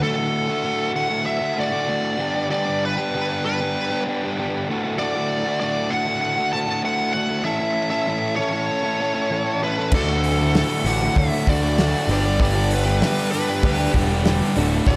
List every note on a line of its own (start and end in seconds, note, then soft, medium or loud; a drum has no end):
0.01 0.48 D2 medium
0.01 0.49 A2 loud
0.01 0.18 D3 loud
0.01 0.17 A3 medium
0.01 2.18 A3 medium
0.01 2.18 D4 medium
0.01 2.18 F#4 medium
0.01 0.16 F#4 loud
0.01 0.91 A4 loud
0.01 2.17 A4 medium
0.17 0.50 D3 medium
0.17 0.49 A3 medium
0.17 0.47 F#4 medium
0.49 0.63 D3 medium
0.49 0.64 A3 medium
0.49 0.64 F#4 medium
0.63 1.25 D2 medium
0.63 0.93 A2 medium
0.63 0.94 D3 loud
0.63 0.95 A3 loud
0.63 0.96 F#4 loud
0.94 1.41 A2 medium
0.94 1.11 D3 medium
0.94 1.10 A3 medium
0.94 1.08 F#4 medium
0.94 1.24 F#5 medium
1.09 1.42 D3 medium
1.09 1.40 A3 medium
1.09 1.38 F#4 medium
1.26 1.58 E5 loud
1.39 1.56 D3 medium
1.39 1.57 A3 medium
1.39 1.58 F#4 medium
1.56 1.87 A2 medium
1.56 1.72 D3 medium
1.56 1.71 A3 medium
1.56 1.69 F#4 medium
1.60 2.47 D5 medium
1.71 1.87 D3 medium
1.71 1.88 A3 medium
1.71 1.89 F#4 medium
1.87 2.16 D2 medium
1.87 2.17 A2 loud
1.87 2.17 D3 medium
1.87 2.18 A3 medium
1.87 2.18 F#4 loud
2.18 2.50 G2 medium
2.18 2.50 D3 medium
2.18 2.35 G3 medium
2.18 4.64 B3 medium
2.18 2.35 B3 medium
2.18 4.64 D4 medium
2.18 2.35 D4 loud
2.18 4.64 G4 medium
2.18 2.33 G4 loud
2.18 4.65 B4 medium
2.34 2.51 G3 medium
2.34 2.51 B3 medium
2.34 2.53 D4 medium
2.34 2.52 G4 medium
2.51 2.97 G2 medium
2.51 2.97 D3 loud
2.51 2.68 G3 medium
2.51 2.67 B3 medium
2.51 2.66 D4 medium
2.51 2.65 G4 medium
2.51 2.82 D5 loud
2.66 2.99 G3 medium
2.66 2.98 B3 medium
2.66 2.98 D4 medium
2.66 2.96 G4 medium
2.85 3.44 B4 loud
2.97 3.13 G3 medium
2.97 3.14 B3 medium
2.97 3.15 D4 medium
2.97 3.15 G4 medium
3.13 3.74 G2 loud
3.13 3.75 D3 loud
3.13 3.43 G3 loud
3.13 3.45 B3 loud
3.13 3.47 D4 loud
3.13 3.47 G4 loud
3.44 3.63 G3 medium
3.44 3.61 B3 medium
3.44 3.60 D4 medium
3.44 3.59 G4 medium
3.44 4.02 B4 medium
3.61 3.92 G3 medium
3.61 3.91 B3 medium
3.61 3.90 D4 medium
3.61 3.89 G4 medium
3.90 4.06 G3 medium
3.90 4.07 B3 medium
3.90 4.08 D4 medium
3.90 4.08 G4 medium
4.07 4.25 G3 medium
4.07 4.24 B3 medium
4.07 4.23 D4 medium
4.07 4.22 G4 medium
4.23 4.37 G3 medium
4.23 4.38 B3 medium
4.23 4.38 D4 medium
4.23 4.39 G4 medium
4.37 4.65 G2 medium
4.37 4.66 D3 loud
4.37 4.66 G3 loud
4.37 4.66 B3 loud
4.37 4.66 D4 loud
4.37 4.67 G4 loud
4.66 4.98 D2 medium
4.66 4.99 A2 loud
4.66 7.42 A3 medium
4.66 7.43 D4 medium
4.66 7.42 F#4 medium
4.66 7.43 A4 medium
4.71 4.85 D3 loud
4.71 4.85 A3 loud
4.71 4.83 F#4 loud
4.84 5.00 D3 medium
4.84 5.02 A3 medium
4.84 5.01 F#4 medium
4.99 5.45 D2 medium
4.99 5.45 A2 loud
4.99 5.16 D3 loud
4.99 5.16 A3 loud
4.99 5.14 F#4 loud
4.99 5.59 D5 loud
5.15 5.46 D3 medium
5.15 5.46 A3 medium
5.15 5.43 F#4 medium
5.44 5.61 D3 medium
5.44 5.62 A3 medium
5.44 5.62 F#4 medium
5.60 6.22 D2 medium
5.60 5.90 A2 loud
5.60 5.91 D3 loud
5.60 5.93 A3 loud
5.60 5.93 F#4 loud
5.60 5.92 D5 loud
5.90 6.37 A2 medium
5.90 6.09 D3 medium
5.90 6.08 A3 medium
5.90 6.06 F#4 medium
5.90 6.19 F#5 loud
6.07 6.39 D3 medium
6.07 6.38 A3 medium
6.07 6.36 F#4 medium
6.21 6.52 F#5 loud
6.37 6.53 D3 medium
6.37 6.54 A3 medium
6.37 6.54 F#4 medium
6.53 6.82 A2 medium
6.53 6.69 D3 medium
6.53 6.69 A3 medium
6.53 6.66 F#4 medium
6.53 6.81 A5 medium
6.68 6.83 D3 medium
6.68 6.85 A3 medium
6.68 6.84 F#4 medium
6.83 7.43 D2 loud
6.83 7.13 A2 medium
6.83 7.14 D3 loud
6.83 7.16 A3 loud
6.83 7.15 F#4 loud
6.83 7.12 F#5 loud
7.13 7.42 A2 medium
7.13 7.29 D3 medium
7.13 7.30 A3 medium
7.13 7.27 F#4 medium
7.13 7.42 F#5 loud
7.28 7.44 D3 medium
7.28 7.45 A3 medium
7.28 7.42 F#4 medium
7.44 7.91 A2 medium
7.44 7.91 E3 medium
7.44 9.90 A3 medium
7.44 7.62 A3 loud
7.44 9.90 C#4 medium
7.44 7.61 C#4 medium
7.44 9.90 E4 medium
7.44 7.60 E4 loud
7.44 9.90 A4 medium
7.44 7.60 A4 loud
7.44 7.89 E5 loud
7.60 7.93 A3 medium
7.60 7.92 C#4 medium
7.60 7.91 E4 medium
7.60 7.91 A4 medium
7.90 8.07 A3 medium
7.90 8.07 C#4 medium
7.90 8.07 E4 medium
7.90 8.09 A4 medium
7.90 8.36 E5 medium
8.06 8.69 A2 loud
8.06 8.69 E3 loud
8.06 8.36 A3 medium
8.06 8.37 C#4 loud
8.06 8.38 E4 loud
8.06 8.39 A4 medium
8.36 8.53 A3 medium
8.36 8.53 C#4 medium
8.36 8.52 E4 medium
8.36 8.50 A4 medium
8.36 9.63 C#5 loud
8.51 8.85 A3 medium
8.51 8.85 C#4 medium
8.51 8.84 E4 medium
8.51 8.82 A4 medium
8.84 8.97 A3 medium
8.84 8.99 C#4 medium
8.84 8.99 E4 medium
8.84 9.01 A4 medium
8.99 9.16 A3 medium
8.99 9.16 C#4 medium
8.99 9.15 E4 medium
8.99 9.13 A4 medium
9.15 9.30 A3 medium
9.15 9.30 C#4 medium
9.15 9.31 E4 medium
9.15 9.31 A4 medium
9.29 9.90 A2 loud
9.29 9.91 E3 medium
9.29 9.61 A3 medium
9.29 9.62 C#4 medium
9.29 9.63 E4 loud
9.29 9.64 A4 medium
9.62 9.79 A3 medium
9.62 9.79 C#4 medium
9.62 9.78 E4 medium
9.62 9.76 A4 medium
9.62 9.91 B4 medium
9.78 9.92 A3 medium
9.78 9.92 C#4 medium
9.78 9.92 E4 medium
9.78 9.91 A4 medium
9.92 10.62 D2 loud
9.92 10.39 D2 medium
9.92 10.40 A2 medium
9.92 10.10 D3 loud
9.92 12.07 A3 medium
9.92 10.09 A3 loud
9.92 10.42 D4 medium
9.92 12.06 D4 medium
9.92 10.42 F#4 medium
9.92 12.07 F#4 medium
9.92 10.42 A4 medium
9.92 12.08 A4 medium
9.92 10.56 A4 loud
9.92 10.43 D5 medium
9.92 kick loud
9.92 crash loud
9.96 10.07 F#4 loud
10.08 10.41 D3 medium
10.08 10.40 A3 medium
10.08 10.38 F#4 medium
10.24 open hi-hat medium
10.39 10.55 D3 medium
10.39 10.56 A3 medium
10.39 10.57 F#4 medium
10.55 11.17 D2 medium
10.55 10.86 A2 medium
10.55 10.87 D3 medium
10.55 10.87 A3 loud
10.55 11.04 D4 medium
10.55 11.04 F#4 medium
10.55 10.88 F#4 loud
10.55 11.04 A4 medium
10.55 10.87 A4 medium
10.55 11.05 E5 medium
10.55 snare loud
10.55 open hi-hat medium
10.84 11.08 A1 medium
10.84 11.14 D2 medium
10.84 11.32 A2 medium
10.84 11.03 D3 medium
10.84 11.01 A3 medium
10.84 11.18 F#5 loud
10.84 open hi-hat medium
10.89 10.99 F#4 medium
11.01 11.33 D3 medium
11.01 11.31 A3 medium
11.01 11.30 F#4 medium
11.15 11.77 D2 medium
11.15 11.28 D2 loud
11.15 11.78 A2 loud
11.15 11.78 D3 loud
11.15 11.66 D4 medium
11.15 11.66 F#4 medium
11.15 11.66 A4 medium
11.15 11.67 C#5 medium
11.15 11.49 E5 loud
11.15 kick loud
11.15 open hi-hat medium
11.31 11.47 D3 medium
11.31 11.48 A3 medium
11.31 11.49 F#4 medium
11.47 11.94 D2 medium
11.47 11.75 D2 medium
11.47 11.77 A2 medium
11.47 11.64 D3 medium
11.47 11.63 A3 medium
11.47 11.61 F#4 medium
11.47 12.11 D5 medium
11.47 kick medium
11.47 open hi-hat medium
11.62 11.78 D3 medium
11.62 11.79 A3 medium
11.62 11.79 F#4 medium
11.78 12.07 D2 medium
11.78 12.07 A2 loud
11.78 12.07 D3 loud
11.78 12.08 A3 loud
11.78 12.07 D4 medium
11.78 12.10 F#4 medium
11.78 12.08 F#4 loud
11.78 12.10 A4 medium
11.78 12.08 D5 medium
11.78 snare loud
11.78 open hi-hat medium
12.07 13.01 G1 loud
12.07 12.39 G2 medium
12.07 12.39 D3 medium
12.07 12.26 G3 medium
12.07 14.53 B3 medium
12.07 12.25 B3 loud
12.07 14.53 D4 medium
12.07 12.83 D4 medium
12.07 12.25 D4 loud
12.07 14.54 G4 medium
12.07 12.83 G4 medium
12.07 14.53 B4 medium
12.07 12.83 B4 medium
12.07 12.83 D5 medium
12.07 open hi-hat medium
12.11 12.23 G4 loud
12.11 12.40 D5 medium
12.24 12.40 G3 medium
12.24 12.41 B3 medium
12.24 12.42 D4 medium
12.24 12.42 G4 medium
12.40 12.87 G2 medium
12.40 12.87 D3 medium
12.40 12.58 G3 loud
12.40 12.56 B3 loud
12.40 12.56 D4 loud
12.40 12.54 G4 loud
12.40 12.73 D5 medium
12.40 kick loud
12.40 open hi-hat medium
12.55 12.87 G3 medium
12.55 12.86 B3 medium
12.55 12.87 D4 medium
12.55 12.85 G4 medium
12.71 13.31 B4 medium
12.71 open hi-hat medium
12.86 13.02 G3 medium
12.86 13.02 B3 medium
12.86 13.03 D4 medium
12.86 13.04 G4 medium
13.01 13.64 G2 medium
13.01 13.64 D3 loud
13.01 13.31 G3 medium
13.01 13.32 B3 loud
13.01 13.51 D4 medium
13.01 13.34 D4 loud
13.01 13.51 G4 medium
13.01 13.34 G4 loud
13.01 13.51 B4 medium
13.01 13.51 E5 medium
13.01 snare loud
13.01 open hi-hat medium
13.32 13.61 G2 medium
13.32 13.62 D3 medium
13.32 13.51 G3 medium
13.32 13.50 B3 medium
13.32 13.48 D4 medium
13.32 13.48 G4 medium
13.32 13.90 B4 medium
13.32 open hi-hat medium
13.49 13.80 G3 medium
13.49 13.79 B3 medium
13.49 13.78 D4 medium
13.49 13.77 G4 medium
13.62 13.86 D2 loud
13.62 14.25 G2 medium
13.62 13.92 G2 medium
13.62 14.25 D3 loud
13.62 13.93 D3 medium
13.62 14.25 G3 loud
13.62 13.93 G3 medium
13.62 13.94 B3 medium
13.62 14.13 D4 medium
13.62 13.94 D4 medium
13.62 14.13 G4 medium
13.62 13.93 G4 medium
13.62 14.13 B4 medium
13.62 14.13 D5 medium
13.62 kick loud
13.62 open hi-hat medium
13.78 13.93 G3 medium
13.78 13.94 B3 medium
13.78 13.95 D4 medium
13.78 13.96 G4 medium
13.93 14.40 E1 loud
13.93 14.55 G2 medium
13.93 14.55 D3 medium
13.93 14.13 G3 medium
13.93 14.12 B3 medium
13.93 14.11 D4 medium
13.93 14.10 G4 medium
13.93 kick medium
13.93 open hi-hat medium
14.11 14.25 G3 medium
14.11 14.25 B3 medium
14.11 14.26 D4 medium
14.11 14.26 G4 medium
14.24 14.54 G2 loud
14.24 14.55 D3 medium
14.24 14.55 G3 loud
14.24 14.55 B3 loud
14.24 14.54 D4 medium
14.24 14.55 D4 medium
14.24 14.56 G4 medium
14.24 14.56 G4 loud
14.24 14.56 B4 medium
14.24 14.55 D5 loud
14.24 snare loud
14.24 open hi-hat medium
14.55 14.80 D1 medium
14.55 14.85 D2 medium
14.55 14.85 A2 medium
14.55 14.72 D3 medium
14.55 14.96 A3 medium
14.55 14.72 A3 loud
14.55 14.96 D4 loud
14.55 14.96 D4 medium
14.55 14.96 F#4 medium
14.55 14.70 F#4 loud
14.55 14.96 A4 medium
14.55 14.96 D5 loud
14.55 open hi-hat medium
14.71 14.87 D3 medium
14.71 14.88 A3 medium
14.71 14.88 F#4 medium
14.86 14.96 D1 loud
14.86 14.96 D2 medium
14.86 14.96 A2 medium
14.86 14.96 D3 loud
14.86 14.96 A3 loud
14.86 14.96 F#4 loud
14.86 14.96 D5 loud
14.86 kick loud
14.86 open hi-hat medium